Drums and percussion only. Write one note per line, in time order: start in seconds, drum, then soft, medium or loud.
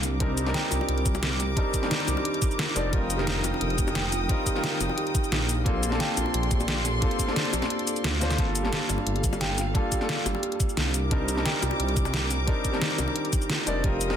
0.03 closed hi-hat medium
0.03 cabasa medium
0.20 kick loud
0.20 closed hi-hat medium
0.38 closed hi-hat medium
0.38 cabasa medium
0.47 snare soft
0.54 snare loud
0.54 closed hi-hat medium
0.71 closed hi-hat medium
0.71 high bongo medium
0.71 cabasa medium
0.81 high bongo medium
0.89 closed hi-hat medium
0.98 closed hi-hat soft
1.06 kick loud
1.06 closed hi-hat medium
1.06 cabasa medium
1.15 high bongo loud
1.15 cabasa soft
1.23 snare loud
1.23 closed hi-hat medium
1.40 snare soft
1.40 closed hi-hat medium
1.40 cabasa medium
1.57 kick loud
1.57 closed hi-hat medium
1.74 kick medium
1.74 closed hi-hat medium
1.74 cabasa medium
1.83 snare soft
1.91 snare loud
1.91 closed hi-hat medium
2.00 closed hi-hat soft
2.07 closed hi-hat medium
2.07 high bongo medium
2.07 cabasa medium
2.17 high bongo medium
2.25 closed hi-hat medium
2.34 closed hi-hat soft
2.42 kick loud
2.42 closed hi-hat medium
2.42 cabasa medium
2.51 cabasa soft
2.59 snare loud
2.59 closed hi-hat medium
2.76 closed hi-hat medium
2.76 cabasa medium
2.93 kick loud
2.93 closed hi-hat medium
3.10 closed hi-hat medium
3.10 cabasa medium
3.19 snare soft
3.27 snare loud
3.27 closed hi-hat medium
3.44 closed hi-hat medium
3.44 high bongo loud
3.44 cabasa medium
3.54 high bongo medium
3.61 closed hi-hat medium
3.70 closed hi-hat soft
3.78 kick loud
3.78 closed hi-hat medium
3.78 cabasa medium
3.87 high bongo loud
3.87 cabasa soft
3.95 snare loud
3.95 closed hi-hat medium
4.12 snare soft
4.12 closed hi-hat medium
4.12 cabasa medium
4.29 kick loud
4.29 closed hi-hat medium
4.46 kick medium
4.46 closed hi-hat medium
4.46 cabasa medium
4.56 snare soft
4.64 snare loud
4.64 closed hi-hat medium
4.80 closed hi-hat medium
4.80 high bongo medium
4.80 cabasa medium
4.89 high bongo medium
4.98 closed hi-hat medium
5.07 closed hi-hat soft
5.15 kick loud
5.15 closed hi-hat medium
5.15 cabasa medium
5.24 cabasa soft
5.32 snare loud
5.32 closed hi-hat medium
5.49 closed hi-hat medium
5.49 cabasa medium
5.66 kick loud
5.66 closed hi-hat medium
5.83 closed hi-hat medium
5.83 cabasa medium
5.92 snare soft
6.00 snare loud
6.00 closed hi-hat loud
6.17 closed hi-hat medium
6.17 high bongo medium
6.17 cabasa medium
6.26 high bongo medium
6.34 closed hi-hat loud
6.43 closed hi-hat soft
6.51 kick loud
6.51 closed hi-hat medium
6.51 cabasa medium
6.60 high bongo medium
6.60 cabasa soft
6.68 snare loud
6.68 closed hi-hat medium
6.85 snare soft
6.85 closed hi-hat medium
6.85 cabasa medium
7.02 kick loud
7.02 closed hi-hat loud
7.11 closed hi-hat soft
7.19 kick medium
7.19 closed hi-hat medium
7.19 cabasa medium
7.28 snare soft
7.36 snare loud
7.36 closed hi-hat loud
7.45 closed hi-hat soft
7.53 closed hi-hat medium
7.53 high bongo medium
7.53 cabasa medium
7.62 snare medium
7.62 high bongo medium
7.70 closed hi-hat loud
7.79 closed hi-hat soft
7.87 closed hi-hat medium
7.87 cabasa medium
7.96 closed hi-hat soft
7.96 cabasa soft
8.04 snare loud
8.04 closed hi-hat loud
8.21 snare medium
8.21 closed hi-hat medium
8.21 cabasa medium
8.31 snare medium
8.31 cabasa soft
8.38 kick loud
8.38 closed hi-hat medium
8.55 closed hi-hat medium
8.55 cabasa medium
8.65 snare soft
8.73 snare loud
8.73 closed hi-hat loud
8.89 closed hi-hat medium
8.89 high bongo medium
8.89 cabasa medium
8.98 high bongo medium
9.07 closed hi-hat loud
9.16 closed hi-hat soft
9.24 kick loud
9.24 closed hi-hat medium
9.24 cabasa medium
9.33 high bongo loud
9.33 cabasa soft
9.41 snare loud
9.41 closed hi-hat loud
9.58 snare soft
9.58 closed hi-hat medium
9.58 cabasa medium
9.75 kick loud
9.75 closed hi-hat medium
9.92 kick medium
9.92 closed hi-hat medium
9.92 cabasa medium
10.01 snare soft
10.09 snare loud
10.09 closed hi-hat loud
10.26 closed hi-hat medium
10.26 high bongo loud
10.26 cabasa medium
10.35 high bongo medium
10.43 closed hi-hat medium
10.52 closed hi-hat soft
10.60 kick loud
10.60 closed hi-hat medium
10.60 cabasa medium
10.69 cabasa soft
10.77 snare loud
10.77 closed hi-hat medium
10.94 closed hi-hat medium
10.94 cabasa medium
11.11 kick loud
11.11 closed hi-hat medium
11.28 closed hi-hat medium
11.28 cabasa medium
11.37 snare soft
11.46 snare loud
11.46 closed hi-hat medium
11.62 closed hi-hat medium
11.62 high bongo loud
11.62 cabasa medium
11.71 high bongo medium
11.80 closed hi-hat medium
11.89 closed hi-hat soft
11.96 kick loud
11.96 closed hi-hat medium
11.96 cabasa medium
12.05 high bongo loud
12.05 cabasa soft
12.14 snare loud
12.14 closed hi-hat medium
12.31 snare soft
12.31 closed hi-hat medium
12.31 cabasa medium
12.48 kick loud
12.48 closed hi-hat medium
12.65 kick medium
12.65 closed hi-hat medium
12.65 cabasa medium
12.74 snare soft
12.82 snare loud
12.82 closed hi-hat medium
12.90 closed hi-hat soft
12.98 closed hi-hat medium
12.98 high bongo loud
12.98 cabasa medium
13.08 high bongo medium
13.16 closed hi-hat medium
13.25 closed hi-hat soft
13.33 kick loud
13.33 closed hi-hat medium
13.33 cabasa medium
13.42 cabasa soft
13.50 snare loud
13.50 closed hi-hat medium
13.67 closed hi-hat medium
13.67 cabasa medium
13.84 kick loud
13.84 closed hi-hat medium
14.01 closed hi-hat medium
14.01 cabasa medium
14.10 snare soft